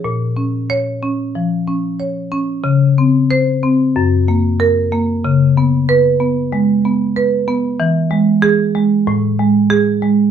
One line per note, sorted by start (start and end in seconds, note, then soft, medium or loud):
0.04 1.32 A#2 medium
0.37 0.90 C#4 soft
0.70 1.23 C#5 medium
1.02 1.55 C#4 soft
1.35 1.87 F3 soft
1.67 2.20 C#4 soft
2.00 2.52 C#5 soft
2.32 2.65 C#4 soft
2.64 3.91 C#3 medium
2.98 3.50 C4 soft
3.31 3.83 C5 medium
3.63 3.96 C4 soft
3.96 5.21 F#2 medium
4.28 4.80 A#3 soft
4.60 5.11 A#4 medium
4.92 5.24 A#3 soft
5.25 6.49 C#3 medium
5.57 6.09 B3 soft
5.89 6.40 B4 medium
6.20 6.72 B3 soft
6.53 7.04 G#3 medium
6.85 7.36 B3 soft
7.16 7.67 B4 medium
7.48 7.80 B3 medium
7.80 9.04 E3 medium
8.11 8.63 G#3 medium
8.42 8.95 G#4 medium
8.75 9.08 G#3 soft
9.07 10.31 A2 medium
9.39 9.91 G#3 medium
9.70 10.22 G#4 medium
10.02 10.31 G#3 medium